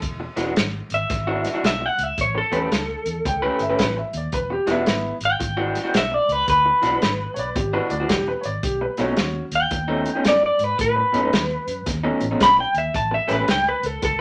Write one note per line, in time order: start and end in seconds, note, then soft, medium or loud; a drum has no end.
0.02 0.25 E1 medium
0.02 kick loud
0.02 closed hi-hat medium
0.20 muted clean electric guitar stroke medium
0.36 0.50 E1 medium
0.36 0.46 E3 medium
0.36 0.46 G#3 medium
0.36 0.45 D4 medium
0.36 0.45 F#4 medium
0.36 snare soft
0.36 closed hi-hat medium
0.46 0.55 E3 soft
0.46 0.55 G#3 medium
0.46 0.56 D4 medium
0.46 0.56 F#4 medium
0.56 0.79 G#1 medium
0.56 muted clean electric guitar stroke soft
0.56 snare loud
0.56 closed hi-hat medium
0.90 1.04 G#1 medium
0.90 closed hi-hat medium
0.94 1.63 E5 medium
1.10 1.45 G#1 medium
1.10 muted clean electric guitar stroke soft
1.10 kick loud
1.10 snare soft
1.10 closed hi-hat medium
1.27 1.48 E3 medium
1.27 1.48 G#3 medium
1.27 1.48 D4 medium
1.27 1.47 F#4 medium
1.44 snare soft
1.44 closed hi-hat medium
1.54 1.69 E3 medium
1.54 1.69 G#3 medium
1.54 1.69 D4 medium
1.54 1.69 F#4 medium
1.64 1.86 B1 medium
1.64 1.86 E5 medium
1.64 snare medium
1.64 closed hi-hat medium
1.81 muted clean electric guitar stroke soft
1.86 2.03 F#5 medium
1.98 2.11 C#2 medium
1.98 closed hi-hat medium
2.03 2.19 E5 medium
2.18 2.40 A1 medium
2.18 2.37 C#5 medium
2.18 kick loud
2.18 closed hi-hat medium
2.35 3.94 A4 medium
2.35 muted clean electric guitar stroke soft
2.52 2.65 E2 medium
2.52 2.61 A3 medium
2.52 2.60 C#4 medium
2.52 2.60 G4 medium
2.52 2.60 B4 medium
2.52 closed hi-hat soft
2.61 2.70 A3 medium
2.61 2.70 C#4 medium
2.61 2.71 G4 medium
2.61 2.71 B4 medium
2.71 2.94 C#2 medium
2.71 muted clean electric guitar stroke soft
2.71 snare medium
2.71 closed hi-hat medium
3.06 3.18 E2 medium
3.06 closed hi-hat medium
3.25 3.48 C#2 medium
3.25 3.61 G5 medium
3.25 muted clean electric guitar stroke soft
3.25 kick loud
3.25 closed hi-hat medium
3.42 3.63 A3 medium
3.42 3.63 C#4 medium
3.42 3.63 G4 medium
3.42 3.62 B4 medium
3.59 3.73 G1 medium
3.59 3.79 E5 medium
3.59 closed hi-hat medium
3.69 3.85 A3 medium
3.69 3.85 C#4 medium
3.69 3.84 G4 medium
3.69 3.84 B4 medium
3.79 4.01 A1 medium
3.79 3.98 B4 medium
3.79 kick medium
3.79 snare medium
3.79 closed hi-hat medium
3.97 4.15 E5 medium
3.97 muted clean electric guitar stroke soft
4.13 4.26 D#2 medium
4.13 4.33 D5 medium
4.13 closed hi-hat medium
4.32 4.55 E1 medium
4.32 4.51 B4 medium
4.32 kick loud
4.32 closed hi-hat medium
4.50 4.69 G4 medium
4.50 muted clean electric guitar stroke soft
4.67 4.80 E1 medium
4.67 4.76 E3 medium
4.67 4.76 G#3 medium
4.67 4.75 D4 medium
4.67 4.75 F#4 medium
4.67 snare soft
4.67 closed hi-hat soft
4.71 5.13 B3 medium
4.71 5.15 E4 medium
4.76 4.85 E3 medium
4.76 4.85 G#3 medium
4.76 4.85 D4 medium
4.76 4.86 F#4 medium
4.86 5.09 G#1 medium
4.86 muted clean electric guitar stroke soft
4.86 snare loud
4.86 closed hi-hat medium
5.21 5.33 G#1 medium
5.21 closed hi-hat medium
5.25 5.93 G5 loud
5.40 5.75 G#1 medium
5.40 muted clean electric guitar stroke soft
5.40 kick medium
5.40 closed hi-hat medium
5.57 5.78 E3 medium
5.57 5.78 G#3 medium
5.57 5.77 D4 medium
5.57 5.77 F#4 loud
5.75 snare soft
5.75 closed hi-hat medium
5.84 6.00 E3 medium
5.84 6.00 G#3 medium
5.84 5.99 D4 medium
5.84 5.99 F#4 medium
5.94 6.17 B1 medium
5.94 6.14 E5 medium
5.94 snare loud
5.94 closed hi-hat medium
6.11 6.32 D5 medium
6.11 muted clean electric guitar stroke soft
6.29 6.41 C#2 medium
6.29 6.48 B4 medium
6.29 closed hi-hat medium
6.48 6.70 D2 medium
6.48 7.53 B4 medium
6.48 kick loud
6.48 closed hi-hat medium
6.66 muted clean electric guitar stroke soft
6.82 6.95 B1 medium
6.82 6.92 E3 medium
6.82 6.91 G#3 medium
6.82 6.91 D4 medium
6.82 6.91 F#4 medium
6.82 snare soft
6.82 closed hi-hat soft
6.92 7.00 E3 medium
6.92 7.01 G#3 medium
6.92 7.01 D4 medium
6.92 7.01 F#4 medium
7.01 7.25 G#1 medium
7.01 muted clean electric guitar stroke soft
7.01 snare medium
7.01 closed hi-hat medium
7.34 7.49 B1 medium
7.34 7.39 C#5 medium
7.34 closed hi-hat medium
7.39 7.56 D5 medium
7.56 7.78 G#1 medium
7.56 7.73 G4 medium
7.56 muted clean electric guitar stroke soft
7.56 kick loud
7.56 closed hi-hat medium
7.73 7.93 E3 medium
7.73 7.93 G#3 medium
7.73 7.93 D4 medium
7.73 7.93 F#4 medium
7.73 7.91 B4 medium
7.90 8.03 D2 medium
7.90 8.09 D5 medium
7.90 closed hi-hat medium
8.00 8.15 E3 medium
8.00 8.15 G#3 medium
8.00 8.15 D4 medium
8.00 8.15 F#4 medium
8.09 8.32 E1 medium
8.09 8.27 G4 medium
8.09 kick medium
8.09 snare loud
8.09 closed hi-hat medium
8.28 8.45 B4 medium
8.28 muted clean electric guitar stroke soft
8.41 8.46 C#5 medium
8.41 closed hi-hat medium
8.45 8.57 G#1 medium
8.45 8.63 D5 medium
8.63 8.86 B1 medium
8.63 8.81 G4 medium
8.63 kick loud
8.63 closed hi-hat medium
8.81 8.99 B4 medium
8.81 muted clean electric guitar stroke soft
8.97 9.11 B1 medium
8.97 9.07 B2 medium
8.97 9.07 A3 medium
8.97 9.07 C#4 medium
8.97 9.42 C#4 medium
8.97 9.06 D#4 medium
8.97 9.45 F#4 medium
8.97 snare soft
8.97 closed hi-hat soft
9.07 9.16 B2 medium
9.07 9.17 A3 soft
9.07 9.17 C#4 medium
9.07 9.17 D#4 medium
9.16 9.40 D#2 medium
9.16 snare medium
9.16 closed hi-hat medium
9.51 9.64 D#2 medium
9.51 10.24 G5 medium
9.51 closed hi-hat medium
9.71 10.06 D#2 medium
9.71 muted clean electric guitar stroke soft
9.71 kick loud
9.71 closed hi-hat medium
9.88 10.09 B2 medium
9.88 10.09 A3 medium
9.88 10.09 C#4 medium
9.88 10.08 D#4 loud
10.05 closed hi-hat medium
10.15 10.31 B2 medium
10.15 10.31 A3 medium
10.15 10.30 C#4 medium
10.15 10.30 D#4 medium
10.24 10.47 F#2 medium
10.24 10.44 D5 medium
10.24 snare loud
10.24 closed hi-hat medium
10.42 10.64 D5 medium
10.42 muted clean electric guitar stroke soft
10.59 10.72 G#2 medium
10.59 closed hi-hat medium
10.64 10.80 B4 medium
10.79 11.01 A2 loud
10.79 11.85 B4 medium
10.79 kick loud
10.79 closed hi-hat medium
10.96 muted clean electric guitar stroke soft
11.13 11.26 F#2 medium
11.13 11.23 B2 medium
11.13 11.23 A3 medium
11.13 11.22 C#4 medium
11.13 11.22 D#4 medium
11.13 closed hi-hat medium
11.23 11.32 B2 soft
11.23 11.32 A3 medium
11.23 11.32 C#4 medium
11.23 11.32 D#4 medium
11.33 11.55 D#2 medium
11.33 muted clean electric guitar stroke soft
11.33 snare loud
11.33 closed hi-hat medium
11.67 11.80 F#2 medium
11.67 closed hi-hat medium
11.86 12.09 D#2 medium
11.86 muted clean electric guitar stroke soft
11.86 kick medium
11.86 snare soft
11.86 closed hi-hat medium
12.04 12.25 B2 medium
12.04 12.25 A3 medium
12.04 12.24 C#4 medium
12.04 12.24 D#4 medium
12.20 12.34 A1 medium
12.20 closed hi-hat medium
12.31 12.47 B2 medium
12.31 12.46 A3 medium
12.31 12.46 C#4 medium
12.31 12.46 D#4 medium
12.40 12.63 B1 medium
12.40 12.59 B5 medium
12.40 kick medium
12.40 snare loud
12.40 closed hi-hat medium
12.58 12.77 G5 medium
12.58 muted clean electric guitar stroke soft
12.74 12.88 D#2 medium
12.74 12.95 E5 medium
12.74 closed hi-hat medium
12.94 13.17 A1 medium
12.94 13.13 A5 medium
12.94 kick loud
12.94 closed hi-hat medium
13.11 13.31 E5 medium
13.11 muted clean electric guitar stroke medium
13.28 13.42 A1 medium
13.28 13.38 A3 medium
13.28 13.38 C#4 medium
13.28 13.38 G4 medium
13.28 13.37 B4 medium
13.28 snare soft
13.28 closed hi-hat soft
13.32 13.49 B4 medium
13.38 13.47 A3 medium
13.38 13.47 C#4 medium
13.38 13.48 G4 medium
13.38 13.48 B4 medium
13.48 13.71 C#2 medium
13.48 13.67 G5 medium
13.48 muted clean electric guitar stroke soft
13.48 snare medium
13.48 closed hi-hat medium
13.68 13.86 B4 medium
13.83 13.96 C#2 medium
13.83 14.03 A4 medium
13.83 closed hi-hat medium
14.02 14.21 C#2 medium
14.02 14.21 A4 medium
14.02 muted clean electric guitar stroke soft
14.02 kick loud
14.02 closed hi-hat medium